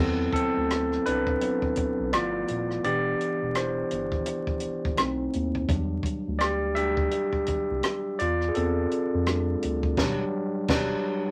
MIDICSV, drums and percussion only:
0, 0, Header, 1, 2, 480
1, 0, Start_track
1, 0, Key_signature, 1, "minor"
1, 0, Tempo, 714286
1, 1902, Time_signature, 4, 2, 24, 8
1, 7601, End_track
2, 0, Start_track
2, 0, Title_t, "Drums"
2, 219, Note_on_c, 9, 36, 85
2, 240, Note_on_c, 9, 42, 61
2, 286, Note_off_c, 9, 36, 0
2, 307, Note_off_c, 9, 42, 0
2, 473, Note_on_c, 9, 42, 76
2, 478, Note_on_c, 9, 37, 83
2, 540, Note_off_c, 9, 42, 0
2, 545, Note_off_c, 9, 37, 0
2, 619, Note_on_c, 9, 37, 33
2, 687, Note_off_c, 9, 37, 0
2, 714, Note_on_c, 9, 42, 79
2, 781, Note_off_c, 9, 42, 0
2, 852, Note_on_c, 9, 36, 85
2, 919, Note_off_c, 9, 36, 0
2, 949, Note_on_c, 9, 42, 80
2, 1016, Note_off_c, 9, 42, 0
2, 1090, Note_on_c, 9, 36, 75
2, 1157, Note_off_c, 9, 36, 0
2, 1181, Note_on_c, 9, 42, 67
2, 1192, Note_on_c, 9, 36, 76
2, 1249, Note_off_c, 9, 42, 0
2, 1259, Note_off_c, 9, 36, 0
2, 1430, Note_on_c, 9, 42, 77
2, 1436, Note_on_c, 9, 37, 95
2, 1497, Note_off_c, 9, 42, 0
2, 1503, Note_off_c, 9, 37, 0
2, 1668, Note_on_c, 9, 42, 52
2, 1735, Note_off_c, 9, 42, 0
2, 1819, Note_on_c, 9, 37, 31
2, 1886, Note_off_c, 9, 37, 0
2, 1910, Note_on_c, 9, 42, 67
2, 1977, Note_off_c, 9, 42, 0
2, 2155, Note_on_c, 9, 42, 57
2, 2222, Note_off_c, 9, 42, 0
2, 2385, Note_on_c, 9, 42, 77
2, 2389, Note_on_c, 9, 37, 89
2, 2452, Note_off_c, 9, 42, 0
2, 2456, Note_off_c, 9, 37, 0
2, 2626, Note_on_c, 9, 42, 73
2, 2693, Note_off_c, 9, 42, 0
2, 2767, Note_on_c, 9, 36, 75
2, 2834, Note_off_c, 9, 36, 0
2, 2861, Note_on_c, 9, 42, 84
2, 2928, Note_off_c, 9, 42, 0
2, 3005, Note_on_c, 9, 36, 76
2, 3072, Note_off_c, 9, 36, 0
2, 3091, Note_on_c, 9, 42, 68
2, 3158, Note_off_c, 9, 42, 0
2, 3259, Note_on_c, 9, 36, 88
2, 3326, Note_off_c, 9, 36, 0
2, 3341, Note_on_c, 9, 42, 83
2, 3347, Note_on_c, 9, 37, 109
2, 3408, Note_off_c, 9, 42, 0
2, 3414, Note_off_c, 9, 37, 0
2, 3584, Note_on_c, 9, 42, 57
2, 3651, Note_off_c, 9, 42, 0
2, 3729, Note_on_c, 9, 36, 74
2, 3796, Note_off_c, 9, 36, 0
2, 3821, Note_on_c, 9, 36, 110
2, 3825, Note_on_c, 9, 42, 69
2, 3889, Note_off_c, 9, 36, 0
2, 3892, Note_off_c, 9, 42, 0
2, 4052, Note_on_c, 9, 36, 82
2, 4069, Note_on_c, 9, 42, 59
2, 4120, Note_off_c, 9, 36, 0
2, 4136, Note_off_c, 9, 42, 0
2, 4304, Note_on_c, 9, 42, 76
2, 4308, Note_on_c, 9, 37, 90
2, 4371, Note_off_c, 9, 42, 0
2, 4375, Note_off_c, 9, 37, 0
2, 4544, Note_on_c, 9, 42, 71
2, 4611, Note_off_c, 9, 42, 0
2, 4685, Note_on_c, 9, 36, 84
2, 4752, Note_off_c, 9, 36, 0
2, 4780, Note_on_c, 9, 42, 74
2, 4847, Note_off_c, 9, 42, 0
2, 4923, Note_on_c, 9, 36, 70
2, 4990, Note_off_c, 9, 36, 0
2, 5017, Note_on_c, 9, 42, 72
2, 5027, Note_on_c, 9, 36, 77
2, 5084, Note_off_c, 9, 42, 0
2, 5094, Note_off_c, 9, 36, 0
2, 5262, Note_on_c, 9, 42, 76
2, 5268, Note_on_c, 9, 37, 108
2, 5329, Note_off_c, 9, 42, 0
2, 5335, Note_off_c, 9, 37, 0
2, 5507, Note_on_c, 9, 42, 64
2, 5574, Note_off_c, 9, 42, 0
2, 5652, Note_on_c, 9, 37, 33
2, 5719, Note_off_c, 9, 37, 0
2, 5744, Note_on_c, 9, 42, 65
2, 5811, Note_off_c, 9, 42, 0
2, 5990, Note_on_c, 9, 42, 64
2, 6057, Note_off_c, 9, 42, 0
2, 6225, Note_on_c, 9, 42, 69
2, 6229, Note_on_c, 9, 37, 87
2, 6292, Note_off_c, 9, 42, 0
2, 6297, Note_off_c, 9, 37, 0
2, 6468, Note_on_c, 9, 42, 72
2, 6536, Note_off_c, 9, 42, 0
2, 6607, Note_on_c, 9, 36, 79
2, 6674, Note_off_c, 9, 36, 0
2, 6701, Note_on_c, 9, 49, 71
2, 6702, Note_on_c, 9, 36, 91
2, 6709, Note_on_c, 9, 38, 88
2, 6768, Note_off_c, 9, 49, 0
2, 6769, Note_off_c, 9, 36, 0
2, 6776, Note_off_c, 9, 38, 0
2, 7179, Note_on_c, 9, 49, 84
2, 7182, Note_on_c, 9, 36, 106
2, 7187, Note_on_c, 9, 38, 102
2, 7246, Note_off_c, 9, 49, 0
2, 7249, Note_off_c, 9, 36, 0
2, 7254, Note_off_c, 9, 38, 0
2, 7601, End_track
0, 0, End_of_file